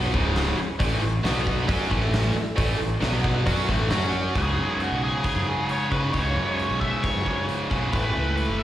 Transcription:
Already playing: B1 B2 F#3 B3 C#4 E4 G#4 C#5
0.03 snare
0.13 C#1 C#2 G#2 C#3, kick
0.36 snare, open hi-hat
0.58 muted distorted electric guitar stroke, muted fingered electric bass stroke
0.79 A1 A2 E3 A3 E4 A4 E5, kick, open hi-hat, cowbell
1.02 A1 A2 E3
1.23 B1 B2 F#3 B3 F#4 B4 F#5, snare, open hi-hat, cowbell
1.47 kick, cowbell
1.67 F#2 F#3 A3 C#4 E4 F#4 A4 E5, kick, open hi-hat, cowbell
1.90 A1 A2 E3 A3, kick
2.13 snare, open hi-hat, cowbell
2.34 muted distorted electric guitar stroke, muted fingered electric bass stroke, cowbell
2.56 A1 A2 E3 A3, kick, open hi-hat, cowbell
2.79 A1 A2 E3
3.00 B1 B2 F#3 B3 F#4 B4 F#5, snare, open hi-hat, cowbell
3.24 kick, cowbell
3.46 F#2 F#3 A3 C#4 E4 F#4 A4 E5, kick, open hi-hat, cowbell
3.67 A1 A2 E3 A3, kick
3.90 F#2 F#3 C#4 F#4 C#5 F#5, snare, open hi-hat, cowbell
4.12 cowbell
4.34 C#2 G#2 C#3 G#4, kick, open hi-hat
4.59 F#2
4.80 F#4, open hi-hat
4.92 B1
5.04 G#4
5.24 G#4, kick, open hi-hat
5.36 F#2
5.69 C#5, open hi-hat
5.90 C#2 G#2 C#3 B4, kick
6.13 C#2 G#2 C#3 C#5, kick, open hi-hat
6.36 F#2
6.57 C#5, open hi-hat
6.71 B1
6.80 E5, kick
7.03 C#5, kick, open hi-hat
7.16 F#2
7.26 kick
7.49 open hi-hat
7.70 B1 C#2 G#2 C#3, kick
7.92 A1 A2 E3 A3 B4, kick, open hi-hat
8.16 C#2
8.36 B4, open hi-hat
8.49 F#1
8.59 E5

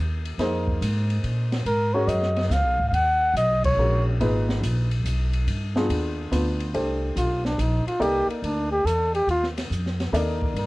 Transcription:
Already playing: D#2
0.25 ride
0.38 F2 A#3 D#4 G#4 C5, snare, ride
0.68 kick
0.81 G#2, hi-hat pedal, ride
1.10 ride
1.23 A#2, ride
1.52 snare, ride
1.65 G#2 A#4, ride
1.94 G#3 C#4 F#4 A#4 C#5
2.07 F#2 D#5, hi-hat pedal, ride
2.22 snare
2.36 snare, ride
2.47 C#2 D#5, snare, hi-hat pedal
2.52 F5
2.64 B1
2.78 G#1, kick
2.89 D#2 F5
2.94 F#5, ride
3.34 B1 D#5, hi-hat pedal, ride
3.64 C#5, kick, ride
3.77 A#1 G#3 C#4 F#4 A#4
4.19 G#1 A#2 D#4 G#4 B4, ride
4.49 snare
4.61 A#1, hi-hat pedal, ride
4.91 ride
5.04 B1, hi-hat pedal, ride
5.33 ride
5.47 G2, ride
5.76 B3 D4 F4 G#4, snare
5.89 D#2, ride
6.31 D2 B3 D4 F4 B4, hi-hat pedal, ride
6.60 ride
6.74 C2 A3 D4 G4 C5, ride
7.16 B1 F4, hi-hat pedal, ride
7.45 D4, snare
7.58 A#1 D#4, hi-hat pedal, ride
7.86 F4, muted upright bass stroke, ride
8.00 C2 A#3 D#4 G4 A4 D5, ride
8.27 A#3, muted upright bass stroke, ride
8.42 D2 D4, ride
8.72 G4
8.85 E2 A4, hi-hat pedal, ride
9.15 G4, ride
9.27 D#2 F4, ride
9.43 snare
9.58 snare, ride
9.70 F2, hi-hat pedal
9.86 snare
10.00 snare, ride
10.12 D#2 A#3 D#4 A4 D5, hi-hat pedal, ride
10.42 kick
10.54 G2, ride
10.58 A#4

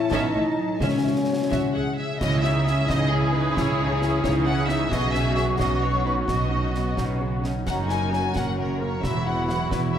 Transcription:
Already playing: A2 E3 C#4 E4 A4 C#5 E5 A5
0.11 A1 B3 C#4 D#4 D#5 E5 A5, concert bass drum, snare
0.22 C#6
0.34 A1 A3 C#4 E5
0.57 F#3 C#5
0.69 A4
0.80 C#2 C#3 G#3 C#4 C#5 E5 G#5, concert bass drum, snare
0.94 G#3
1.04 C#2 C#4 E4 E5
1.16 G#4
1.28 C#5
1.40 E5
1.50 C#2 F#4 C#5 E5 G#5, concert bass drum, snare
1.64 C#6
1.74 C#2 G#4 E5 F#5 G#5
1.87 E5
1.98 G#4 C#5 E5
2.09 G#4
2.20 C#2 C#3 E3 C#4 E4 G#4 D#5 D#6, concert bass drum, snare, crash
2.32 G#3
2.43 C#4 D#4 E4 E5, snare
2.55 G#4
2.66 C#4 E4 D#5 E5, snare
2.77 E5
2.87 C#2 C#3 E3 C#4 D#4 E4 D#5 G#5, concert bass drum, snare
3.00 D#6
3.11 C#4 E4 G#4 G#5
3.23 E5
3.33 C#4 D#4 B4 D#5
3.45 G#4
3.55 C#2 C#3 E3 C#4 E4 C#5, concert bass drum, snare
3.66 G#3
3.77 C#4 D#4 E4
3.89 G#4
4.00 C#4 E4 D#5, snare
4.11 E5
4.23 C#2 C#3 E3 C#4 D#4 E4 C#5 G#5, concert bass drum, snare
4.34 D#6
4.46 C#4 E4 F#5 G#5
4.57 E5
4.67 C#4 D#4 D#5 E5, snare
4.79 G#4
4.90 B1 B2 F#3 B3 C#4 F#4 G#4 D#5 C#6, concert bass drum, snare
5.01 F#3
5.13 C#4 D#4 F#4 E5, snare
5.24 B4
5.35 B3 F#4 C#5 E5, snare
5.46 F#5
5.57 B1 B2 F#3 C#4 D#4 F#4 D#5 B5, concert bass drum, snare
5.80 B3 F#4 C#5 B5
5.92 F#5
6.03 C#4 D#4 B4 C#5
6.15 B4
6.27 B1 B2 F#3 B3 C#4 F#4 D#5, concert bass drum, snare
6.39 F#3
6.49 C#4 D#4 F#4
6.61 B4
6.72 B3 F#4 C#5, snare
6.85 F#5
6.96 B1 B2 C#4 D#4 B5, concert bass drum, snare
7.19 C#3 B3 F#4 B5
7.32 F#5
7.42 C#3 C#4 D#4 C#5, snare
7.55 B4
7.66 F#1 F#2 C#4 D#4 F#4 F#5 A#5, concert bass drum, snare, crash
7.78 C#3
7.89 A#3 F#4 A#4 G#5, snare
8.01 A#4
8.12 F#3 A#3 C#4 F#4 C#5 G#5, snare
8.23 F#5
8.35 F#1 F#2 A#3 C#4 F#4 A#4 F#5 A#5, concert bass drum, snare
8.47 C#6
8.58 C#4 F#4 A#4 A#5
8.70 F#5
8.80 F#3 A#3 A#4 C#5
8.92 A#4
9.03 E1 E2 F#3 E4 F#4 E5 B5, concert bass drum, snare
9.16 B2
9.26 B3 E4 F#4 F#5
9.38 B4
9.48 F#3 B3 F#4 E5 F#5, snare
9.61 F#5
9.71 E1 E2 B3 E4 F#4 B4 B5, concert bass drum, snare
9.83 E6
9.94 F#3 F#4 E5 B5

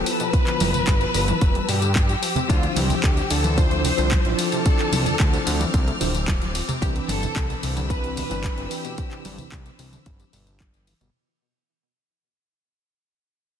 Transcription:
Already playing: F3 B3 E4 A4 B4 A5 E6
0.06 F3 B4, open hi-hat, tambourine
0.20 B2, closed hi-hat, tambourine
0.32 B2 F3 B3 E4 B4, kick, closed hi-hat, tambourine
0.47 D3, clap, closed hi-hat
0.60 F1 E3, open hi-hat, tambourine, high conga
0.74 G1 F3, closed hi-hat, tambourine, low conga
0.87 G1 G3, kick, clap, closed hi-hat, tambourine
1.01 B2, closed hi-hat, tambourine
1.14 G1 D3, open hi-hat, tambourine
1.28 E3, closed hi-hat, tambourine, high conga
1.41 F1 F3, kick, closed hi-hat, tambourine
1.55 G3, closed hi-hat
1.68 G2 B2 G4, open hi-hat, tambourine
1.82 D3, closed hi-hat, tambourine
1.95 E3, kick, clap, closed hi-hat, tambourine, high conga
2.09 F3, closed hi-hat, tambourine
2.22 F3 C4 D6, open hi-hat, tambourine
2.35 C3, closed hi-hat, tambourine, low conga
2.48 D2 C3 F3 D4 E4 F4 C5, kick, closed hi-hat, ride, tambourine
2.63 D3, closed hi-hat
2.76 C2 E3 G4, open hi-hat, ride, tambourine, high conga
2.90 F3, closed hi-hat, tambourine, low conga
3.03 D2 A3, kick, clap, closed hi-hat, ride, tambourine
3.17 C3, closed hi-hat, tambourine
3.30 D2 D3 A4, open hi-hat, ride, tambourine
3.44 E3, closed hi-hat, tambourine, high conga
3.57 F3 D4 E4 C5, kick, closed hi-hat, ride, tambourine
3.71 A3, closed hi-hat
3.85 C3 C5, open hi-hat, ride, tambourine, low conga
3.97 C2 D3 F3 D4 E4 C5, closed hi-hat, tambourine
4.11 E3, kick, clap, closed hi-hat, ride, tambourine, high conga
4.25 A1 F3, closed hi-hat
4.39 F3 A4 F6, open hi-hat, ride, tambourine
4.52 C3, closed hi-hat, tambourine
4.65 C3 F3 D4 E4 D5, kick, closed hi-hat, ride, tambourine
4.79 D3, clap, closed hi-hat
4.92 C2 E3, open hi-hat, ride, tambourine, high conga
5.06 D2 F3, closed hi-hat, tambourine, low conga
5.20 D2 A3, kick, clap, closed hi-hat, ride, tambourine
5.33 C3, closed hi-hat, tambourine
5.47 D2 D3, open hi-hat, ride, tambourine
5.60 E3, closed hi-hat, tambourine, high conga
5.73 C2 F3, kick, closed hi-hat, ride, tambourine
5.87 A3, closed hi-hat
6.00 D1 C3 F3 D4 E4 C5, open hi-hat, ride, tambourine
6.14 D3, closed hi-hat, tambourine
6.28 E3, kick, clap, closed hi-hat, ride, tambourine, high conga
6.42 F3, closed hi-hat
6.55 F3, open hi-hat, ride, tambourine
6.69 C3, closed hi-hat, tambourine, low conga
6.81 C2 B2 E3 C4 D4 G4 B4 B5 E6, kick, closed hi-hat, ride, tambourine
6.96 C3, closed hi-hat
7.08 G1 D3 A4, open hi-hat, ride, tambourine, high conga
7.23 E3, closed hi-hat, tambourine, low conga
7.36 C2 G3, kick, clap, closed hi-hat, ride, tambourine
7.50 B2, closed hi-hat, tambourine
7.63 C2 C3, open hi-hat, ride, tambourine
7.77 D3, closed hi-hat, tambourine, high conga
7.89 E3 C4 D4 B4, kick, closed hi-hat, ride, tambourine
8.04 G3, closed hi-hat
8.17 B2 B4, open hi-hat, ride, tambourine, low conga
8.30 G1 C3 E3 C4 D4 B4, closed hi-hat, tambourine
8.43 D3, kick, clap, closed hi-hat, ride, tambourine, high conga
8.58 G1 E3, closed hi-hat
8.71 E3 G4, open hi-hat, ride, tambourine
8.84 B2, closed hi-hat, tambourine
8.97 B2 E3 C4 D4 C5, kick, closed hi-hat, ride, tambourine
9.11 C3, clap, closed hi-hat
9.25 G1 D3, open hi-hat, ride, tambourine, high conga
9.38 C2 E3, closed hi-hat, tambourine, low conga
9.52 C2 G3, kick, clap, closed hi-hat, ride, tambourine
9.66 B2, closed hi-hat, tambourine
9.79 C2 C3, open hi-hat, ride, tambourine
9.92 D3, closed hi-hat, tambourine, high conga
10.06 G1 E3, kick, closed hi-hat, ride, tambourine
10.20 G3, closed hi-hat, tambourine
10.33 G1 B2, open hi-hat, ride, tambourine
10.47 C3, closed hi-hat, tambourine
10.60 D3, kick, clap, closed hi-hat, ride, tambourine, high conga
10.74 E3, closed hi-hat, tambourine
10.87 E3, open hi-hat, ride, tambourine
11.01 G1 B2, closed hi-hat, tambourine, low conga

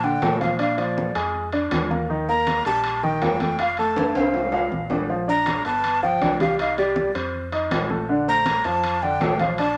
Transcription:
Already playing: A#2
0.04 D3 D4 G5, high conga
0.22 A#2 A3 A4, high conga, high timbale, low timbale
0.40 F3 F4 F5, high conga, high timbale
0.59 D4 D5 F5, high conga, high timbale
0.78 F3 F4 D5, high conga, high timbale
0.97 high conga, low timbale
1.15 F2 G#3 G#4, high conga, high timbale
1.34 high conga
1.52 D4 D5, high conga, high timbale
1.71 D#2, high conga, high timbale, low timbale
1.91 A#3 A#4, high conga
2.10 D#3 D#4, high conga
2.28 A#3 A#4 A#5, high conga
2.47 high conga, high timbale, low timbale
2.65 A#1 G3 G4 A5, high conga, high timbale
2.84 high conga, high timbale
3.03 D#3 D#4 G5, high conga
3.22 F1 A#3 A#4, high conga, high timbale, low timbale
3.40 A3 A4, high conga, high timbale
3.59 F4 F5, high conga, high timbale
3.77 A3 A4 A5, high conga, high timbale
3.96 high conga, high timbale
4.15 C2 C4 C5 F5, high conga, high timbale
4.34 high conga, low timbale
4.52 F4 F5, high conga, low timbale
4.72 A#1, high conga
4.90 D4 D5, high conga, low timbale
5.10 F3 F4, high conga
5.28 D4 D5 A#5, high conga
5.46 high conga, high timbale, low timbale
5.65 G1 B3 B4 A5, high conga, high timbale
5.84 high conga, high timbale
6.03 F3 F4 G5, high conga
6.21 C2 D4 D5, high conga, high timbale, low timbale
6.40 G3 G4 F5, high conga, high timbale
6.59 D#4 D#5 F5, high conga, high timbale
6.77 G3 G4 D5, high conga, high timbale
6.96 high conga, low timbale
7.15 F2 C4 C5, high conga, high timbale
7.34 high conga
7.52 D#4 D#5, high conga, high timbale
7.71 A#1, high conga, high timbale, low timbale
7.90 A3 A4, high conga
8.09 D3 D4, high conga
8.27 A3 C5 A#5, high conga
8.46 high conga, high timbale, low timbale
8.64 F2 F3 F4 A5, high conga, high timbale
8.84 high conga, high timbale
9.02 D3 D4 G5, high conga
9.21 A#1 A3 A4, high conga, high timbale, low timbale
9.39 F3 F4 F5, high conga, high timbale
9.58 D4 D5 A5, high conga, high timbale

